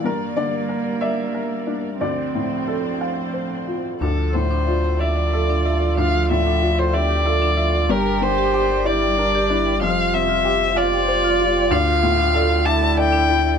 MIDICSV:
0, 0, Header, 1, 7, 480
1, 0, Start_track
1, 0, Key_signature, -1, "minor"
1, 0, Tempo, 657895
1, 36, Time_signature, 6, 3, 24, 8
1, 4357, Tempo, 640342
1, 7237, Tempo, 632244
1, 10101, End_track
2, 0, Start_track
2, 0, Title_t, "Violin"
2, 0, Program_c, 0, 40
2, 2926, Note_on_c, 0, 69, 51
2, 3163, Note_on_c, 0, 72, 54
2, 3174, Note_off_c, 0, 69, 0
2, 3642, Note_on_c, 0, 74, 55
2, 3653, Note_off_c, 0, 72, 0
2, 4356, Note_off_c, 0, 74, 0
2, 4362, Note_on_c, 0, 77, 60
2, 4598, Note_off_c, 0, 77, 0
2, 4614, Note_on_c, 0, 76, 64
2, 4969, Note_on_c, 0, 72, 59
2, 4980, Note_off_c, 0, 76, 0
2, 5082, Note_on_c, 0, 74, 74
2, 5094, Note_off_c, 0, 72, 0
2, 5803, Note_on_c, 0, 70, 71
2, 5815, Note_off_c, 0, 74, 0
2, 6047, Note_on_c, 0, 72, 76
2, 6058, Note_off_c, 0, 70, 0
2, 6524, Note_on_c, 0, 74, 78
2, 6535, Note_off_c, 0, 72, 0
2, 7241, Note_off_c, 0, 74, 0
2, 7245, Note_on_c, 0, 77, 81
2, 7483, Note_on_c, 0, 76, 89
2, 7495, Note_off_c, 0, 77, 0
2, 7965, Note_on_c, 0, 74, 95
2, 7976, Note_off_c, 0, 76, 0
2, 8679, Note_on_c, 0, 77, 91
2, 8690, Note_off_c, 0, 74, 0
2, 9395, Note_on_c, 0, 81, 81
2, 9407, Note_off_c, 0, 77, 0
2, 9635, Note_on_c, 0, 79, 96
2, 9647, Note_off_c, 0, 81, 0
2, 10101, Note_off_c, 0, 79, 0
2, 10101, End_track
3, 0, Start_track
3, 0, Title_t, "String section"
3, 0, Program_c, 1, 48
3, 0, Note_on_c, 1, 74, 48
3, 29, Note_on_c, 1, 55, 43
3, 29, Note_on_c, 1, 70, 41
3, 1459, Note_off_c, 1, 74, 0
3, 1463, Note_off_c, 1, 70, 0
3, 1464, Note_off_c, 1, 55, 0
3, 1468, Note_on_c, 1, 72, 36
3, 1468, Note_on_c, 1, 74, 34
3, 1469, Note_on_c, 1, 53, 32
3, 2897, Note_off_c, 1, 74, 0
3, 2919, Note_off_c, 1, 53, 0
3, 2926, Note_off_c, 1, 72, 0
3, 2926, Note_on_c, 1, 74, 36
3, 2927, Note_on_c, 1, 53, 34
3, 2932, Note_on_c, 1, 69, 36
3, 5768, Note_off_c, 1, 53, 0
3, 5768, Note_off_c, 1, 74, 0
3, 5770, Note_off_c, 1, 69, 0
3, 5795, Note_on_c, 1, 74, 46
3, 5796, Note_on_c, 1, 70, 38
3, 5798, Note_on_c, 1, 55, 40
3, 7239, Note_off_c, 1, 70, 0
3, 7239, Note_off_c, 1, 74, 0
3, 7240, Note_on_c, 1, 67, 47
3, 7242, Note_on_c, 1, 72, 53
3, 8677, Note_on_c, 1, 50, 49
3, 8678, Note_off_c, 1, 67, 0
3, 8679, Note_off_c, 1, 55, 0
3, 8679, Note_off_c, 1, 72, 0
3, 8679, Note_on_c, 1, 69, 51
3, 8685, Note_on_c, 1, 74, 52
3, 10101, Note_off_c, 1, 50, 0
3, 10101, Note_off_c, 1, 69, 0
3, 10101, Note_off_c, 1, 74, 0
3, 10101, End_track
4, 0, Start_track
4, 0, Title_t, "Marimba"
4, 0, Program_c, 2, 12
4, 2932, Note_on_c, 2, 62, 52
4, 3002, Note_off_c, 2, 62, 0
4, 3049, Note_on_c, 2, 65, 37
4, 3120, Note_off_c, 2, 65, 0
4, 3290, Note_on_c, 2, 62, 55
4, 3362, Note_off_c, 2, 62, 0
4, 3407, Note_on_c, 2, 74, 40
4, 3480, Note_off_c, 2, 74, 0
4, 3533, Note_on_c, 2, 69, 36
4, 3604, Note_off_c, 2, 69, 0
4, 3653, Note_on_c, 2, 62, 50
4, 3723, Note_off_c, 2, 62, 0
4, 3765, Note_on_c, 2, 74, 43
4, 3838, Note_off_c, 2, 74, 0
4, 4009, Note_on_c, 2, 62, 61
4, 4079, Note_off_c, 2, 62, 0
4, 4129, Note_on_c, 2, 69, 41
4, 4198, Note_off_c, 2, 69, 0
4, 4245, Note_on_c, 2, 74, 38
4, 4315, Note_off_c, 2, 74, 0
4, 4360, Note_on_c, 2, 62, 58
4, 4433, Note_off_c, 2, 62, 0
4, 4485, Note_on_c, 2, 65, 37
4, 4556, Note_off_c, 2, 65, 0
4, 4729, Note_on_c, 2, 62, 61
4, 4799, Note_off_c, 2, 62, 0
4, 4847, Note_on_c, 2, 74, 40
4, 4918, Note_off_c, 2, 74, 0
4, 4966, Note_on_c, 2, 69, 36
4, 5036, Note_off_c, 2, 69, 0
4, 5085, Note_on_c, 2, 62, 58
4, 5156, Note_off_c, 2, 62, 0
4, 5208, Note_on_c, 2, 74, 47
4, 5278, Note_off_c, 2, 74, 0
4, 5442, Note_on_c, 2, 62, 67
4, 5513, Note_off_c, 2, 62, 0
4, 5558, Note_on_c, 2, 69, 47
4, 5630, Note_off_c, 2, 69, 0
4, 5678, Note_on_c, 2, 74, 40
4, 5750, Note_off_c, 2, 74, 0
4, 5797, Note_on_c, 2, 67, 58
4, 5869, Note_off_c, 2, 67, 0
4, 5922, Note_on_c, 2, 70, 42
4, 5993, Note_off_c, 2, 70, 0
4, 6163, Note_on_c, 2, 67, 59
4, 6233, Note_off_c, 2, 67, 0
4, 6282, Note_on_c, 2, 79, 53
4, 6353, Note_off_c, 2, 79, 0
4, 6405, Note_on_c, 2, 74, 47
4, 6476, Note_off_c, 2, 74, 0
4, 6522, Note_on_c, 2, 67, 60
4, 6594, Note_off_c, 2, 67, 0
4, 6645, Note_on_c, 2, 79, 54
4, 6716, Note_off_c, 2, 79, 0
4, 6888, Note_on_c, 2, 67, 79
4, 6958, Note_off_c, 2, 67, 0
4, 7008, Note_on_c, 2, 74, 54
4, 7078, Note_off_c, 2, 74, 0
4, 7123, Note_on_c, 2, 79, 49
4, 7194, Note_off_c, 2, 79, 0
4, 7241, Note_on_c, 2, 65, 72
4, 7313, Note_off_c, 2, 65, 0
4, 7360, Note_on_c, 2, 72, 51
4, 7432, Note_off_c, 2, 72, 0
4, 7598, Note_on_c, 2, 65, 75
4, 7671, Note_off_c, 2, 65, 0
4, 7722, Note_on_c, 2, 79, 53
4, 7793, Note_off_c, 2, 79, 0
4, 7838, Note_on_c, 2, 77, 49
4, 7911, Note_off_c, 2, 77, 0
4, 7958, Note_on_c, 2, 65, 62
4, 8032, Note_off_c, 2, 65, 0
4, 8086, Note_on_c, 2, 79, 62
4, 8157, Note_off_c, 2, 79, 0
4, 8321, Note_on_c, 2, 65, 82
4, 8393, Note_off_c, 2, 65, 0
4, 8439, Note_on_c, 2, 77, 61
4, 8511, Note_off_c, 2, 77, 0
4, 8565, Note_on_c, 2, 79, 52
4, 8635, Note_off_c, 2, 79, 0
4, 8679, Note_on_c, 2, 62, 80
4, 8750, Note_off_c, 2, 62, 0
4, 8804, Note_on_c, 2, 65, 52
4, 8874, Note_off_c, 2, 65, 0
4, 9034, Note_on_c, 2, 62, 65
4, 9107, Note_off_c, 2, 62, 0
4, 9155, Note_on_c, 2, 74, 57
4, 9227, Note_off_c, 2, 74, 0
4, 9273, Note_on_c, 2, 69, 51
4, 9346, Note_off_c, 2, 69, 0
4, 9399, Note_on_c, 2, 62, 68
4, 9471, Note_off_c, 2, 62, 0
4, 9515, Note_on_c, 2, 74, 55
4, 9588, Note_off_c, 2, 74, 0
4, 9751, Note_on_c, 2, 62, 82
4, 9825, Note_off_c, 2, 62, 0
4, 9871, Note_on_c, 2, 69, 56
4, 9945, Note_off_c, 2, 69, 0
4, 9994, Note_on_c, 2, 74, 51
4, 10068, Note_off_c, 2, 74, 0
4, 10101, End_track
5, 0, Start_track
5, 0, Title_t, "Upright piano"
5, 0, Program_c, 3, 0
5, 0, Control_c, 3, 64, 127
5, 28, Note_on_c, 3, 43, 41
5, 39, Note_on_c, 3, 70, 69
5, 48, Control_c, 3, 64, 0
5, 157, Control_c, 3, 64, 127
5, 254, Note_off_c, 3, 70, 0
5, 264, Note_on_c, 3, 50, 38
5, 267, Note_on_c, 3, 74, 64
5, 502, Note_on_c, 3, 70, 42
5, 644, Note_off_c, 3, 50, 0
5, 712, Note_off_c, 3, 74, 0
5, 737, Note_on_c, 3, 76, 60
5, 739, Note_on_c, 3, 74, 40
5, 885, Note_off_c, 3, 70, 0
5, 979, Note_on_c, 3, 70, 39
5, 1125, Note_off_c, 3, 74, 0
5, 1216, Note_on_c, 3, 62, 31
5, 1368, Note_off_c, 3, 70, 0
5, 1434, Note_off_c, 3, 43, 0
5, 1435, Note_off_c, 3, 76, 0
5, 1464, Note_off_c, 3, 62, 0
5, 1464, Note_on_c, 3, 38, 40
5, 1466, Note_on_c, 3, 74, 51
5, 1481, Control_c, 3, 64, 0
5, 1590, Control_c, 3, 64, 127
5, 1712, Note_on_c, 3, 45, 31
5, 1951, Note_on_c, 3, 69, 36
5, 2102, Note_off_c, 3, 45, 0
5, 2194, Note_on_c, 3, 77, 35
5, 2341, Note_off_c, 3, 69, 0
5, 2433, Note_on_c, 3, 72, 31
5, 2584, Note_off_c, 3, 77, 0
5, 2654, Note_off_c, 3, 74, 0
5, 2679, Note_on_c, 3, 65, 28
5, 2826, Note_off_c, 3, 72, 0
5, 2895, Note_off_c, 3, 38, 0
5, 2924, Note_off_c, 3, 65, 0
5, 2925, Note_on_c, 3, 38, 41
5, 2940, Control_c, 3, 64, 0
5, 3062, Control_c, 3, 64, 127
5, 3170, Note_on_c, 3, 45, 33
5, 3409, Note_on_c, 3, 65, 42
5, 3554, Note_off_c, 3, 45, 0
5, 3651, Note_on_c, 3, 76, 42
5, 3793, Note_off_c, 3, 65, 0
5, 3890, Note_on_c, 3, 69, 38
5, 4031, Note_off_c, 3, 76, 0
5, 4123, Note_on_c, 3, 76, 36
5, 4266, Note_off_c, 3, 69, 0
5, 4330, Note_off_c, 3, 38, 0
5, 4360, Note_on_c, 3, 38, 40
5, 4374, Control_c, 3, 64, 0
5, 4475, Control_c, 3, 64, 127
5, 4504, Note_off_c, 3, 76, 0
5, 4604, Note_on_c, 3, 45, 35
5, 4840, Note_on_c, 3, 65, 45
5, 4988, Note_off_c, 3, 45, 0
5, 5076, Note_on_c, 3, 76, 47
5, 5224, Note_off_c, 3, 65, 0
5, 5318, Note_on_c, 3, 69, 44
5, 5460, Note_off_c, 3, 76, 0
5, 5555, Note_on_c, 3, 76, 39
5, 5701, Note_off_c, 3, 69, 0
5, 5768, Note_off_c, 3, 38, 0
5, 5795, Note_on_c, 3, 43, 50
5, 5796, Note_off_c, 3, 76, 0
5, 5813, Control_c, 3, 64, 0
5, 5949, Control_c, 3, 64, 127
5, 6033, Note_on_c, 3, 50, 44
5, 6277, Note_on_c, 3, 67, 51
5, 6420, Note_off_c, 3, 50, 0
5, 6517, Note_on_c, 3, 74, 51
5, 6664, Note_off_c, 3, 67, 0
5, 6763, Note_on_c, 3, 70, 45
5, 6905, Note_off_c, 3, 74, 0
5, 6999, Note_on_c, 3, 62, 41
5, 7146, Note_off_c, 3, 70, 0
5, 7209, Note_off_c, 3, 43, 0
5, 7237, Note_on_c, 3, 41, 48
5, 7239, Note_off_c, 3, 62, 0
5, 7255, Control_c, 3, 64, 0
5, 7367, Control_c, 3, 64, 127
5, 7480, Note_on_c, 3, 48, 46
5, 7718, Note_on_c, 3, 67, 55
5, 7864, Note_off_c, 3, 48, 0
5, 7956, Note_on_c, 3, 77, 57
5, 8105, Note_off_c, 3, 67, 0
5, 8199, Note_on_c, 3, 72, 50
5, 8343, Note_off_c, 3, 77, 0
5, 8438, Note_on_c, 3, 65, 49
5, 8582, Note_off_c, 3, 72, 0
5, 8647, Note_off_c, 3, 41, 0
5, 8671, Note_on_c, 3, 38, 64
5, 8677, Note_off_c, 3, 65, 0
5, 8693, Control_c, 3, 64, 0
5, 8808, Control_c, 3, 64, 127
5, 8917, Note_on_c, 3, 45, 48
5, 9154, Note_on_c, 3, 69, 52
5, 9301, Note_off_c, 3, 45, 0
5, 9397, Note_on_c, 3, 76, 57
5, 9540, Note_off_c, 3, 69, 0
5, 9640, Note_on_c, 3, 74, 51
5, 9782, Note_off_c, 3, 76, 0
5, 9883, Note_on_c, 3, 64, 42
5, 10024, Note_off_c, 3, 74, 0
5, 10085, Note_off_c, 3, 38, 0
5, 10101, Note_off_c, 3, 64, 0
5, 10101, End_track
6, 0, Start_track
6, 0, Title_t, "Cello"
6, 0, Program_c, 4, 42
6, 36, Note_on_c, 4, 58, 57
6, 1438, Note_off_c, 4, 58, 0
6, 1473, Note_on_c, 4, 60, 49
6, 2753, Note_off_c, 4, 60, 0
6, 3653, Note_on_c, 4, 65, 53
6, 5080, Note_on_c, 4, 67, 49
6, 5091, Note_off_c, 4, 65, 0
6, 5324, Note_on_c, 4, 65, 50
6, 5336, Note_off_c, 4, 67, 0
6, 5553, Note_off_c, 4, 65, 0
6, 5557, Note_on_c, 4, 65, 59
6, 5803, Note_on_c, 4, 67, 74
6, 5814, Note_off_c, 4, 65, 0
6, 6512, Note_on_c, 4, 64, 61
6, 6523, Note_off_c, 4, 67, 0
6, 6760, Note_on_c, 4, 62, 52
6, 6771, Note_off_c, 4, 64, 0
6, 6994, Note_on_c, 4, 64, 58
6, 7006, Note_off_c, 4, 62, 0
6, 7236, Note_off_c, 4, 64, 0
6, 7239, Note_on_c, 4, 65, 70
6, 7946, Note_off_c, 4, 65, 0
6, 7963, Note_on_c, 4, 65, 71
6, 9391, Note_on_c, 4, 64, 72
6, 9403, Note_off_c, 4, 65, 0
6, 10101, Note_off_c, 4, 64, 0
6, 10101, End_track
7, 0, Start_track
7, 0, Title_t, "Sub bass"
7, 0, Program_c, 5, 38
7, 2926, Note_on_c, 5, 38, 55
7, 5797, Note_on_c, 5, 31, 60
7, 5809, Note_off_c, 5, 38, 0
7, 7238, Note_on_c, 5, 29, 56
7, 7249, Note_off_c, 5, 31, 0
7, 8676, Note_on_c, 5, 38, 64
7, 8688, Note_off_c, 5, 29, 0
7, 10101, Note_off_c, 5, 38, 0
7, 10101, End_track
0, 0, End_of_file